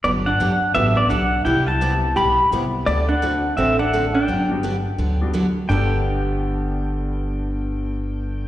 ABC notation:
X:1
M:4/4
L:1/16
Q:"Swing" 1/4=170
K:G
V:1 name="Pedal steel guitar"
d2 f6 e2 d2 f4 | g2 a6 b4 z4 | d2 f6 e2 f4 g2- | g12 z4 |
g16- | g16 |]
V:2 name="Hollow-body jazz guitar"
B,2 D6 B,2 B,2 D4 | E2 E6 G4 z4 | A,2 D6 C2 D4 D2- | D12 z4 |
D16- | D16 |]
V:3 name="Upright piano"
z8 [B,DFG]2 z6 | z4 [B,CEG]6 z2 [B,CEG]4 | z4 [A,CDF]6 z6 | z2 [G,B,DF]2 z6 [G,B,DF]2 z4 |
[G,,D,G,B,A]16- | [G,,D,G,B,A]16 |]
V:4 name="Steel-string acoustic guitar"
[D,F,B,DG]2 z2 [D,F,B,DG] z3 [D,F,B,DG]2 z2 [D,F,B,DG] z3 | [C,G,B,EG]2 z2 [C,G,B,EG] z3 [C,G,B,EG]2 z2 [C,G,B,EG] z3 | [D,A,CFA]2 z2 [D,A,CFA] z3 [D,A,CFA]2 z2 [D,A,CFA] z3 | [D,F,B,DG]2 z2 [D,F,B,DG] z3 [D,F,B,DG]2 z2 [D,F,B,DG] z3 |
[G,,D,B,DG]16- | [G,,D,B,DG]16 |]
V:5 name="Upright bass" clef=bass
G,,,4 G,,,4 A,,,4 B,,,4 | C,,8 B,,,4 C,,4 | D,,8 A,,,8 | G,,,8 D,,8 |
G,,,16- | G,,,16 |]